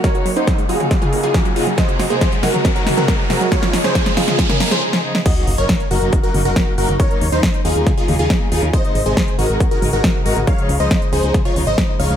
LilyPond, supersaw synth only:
\new Staff \with { instrumentName = "Supersaw synth" } { \time 4/4 \key ges \lydian \tempo 4 = 138 <bes' des''>8. <ees' c''>8. <f' aes'>8. <f' aes'>8 <f' aes'>8. <f' aes'>8 | <c'' ees''>8. <aes' c''>8. <ges' bes'>8. <ges' bes'>8 <ges' bes'>8. <ges' bes'>8 | <f' des''>8. <aes' c''>8. <f' aes'>8. <des' bes'>8 <aes' c''>16 r4 | <ges' ees''>8. <bes' des''>8. <ges' bes'>8. <ges' bes'>8 <ges' bes'>8. <ges' bes'>8 |
<bes' des''>8. <ees' c''>8. <f' aes'>8. <f' aes'>8 <f' aes'>8. <f' aes'>8 | <c'' ees''>8. <aes' c''>8. <ges' bes'>8. <ges' bes'>8 <ges' bes'>8. <ges' bes'>8 | <des'' f''>8. <c'' ees''>8. <aes' c''>8. <f' des''>8 <c'' ees''>8. <des'' f''>8 | }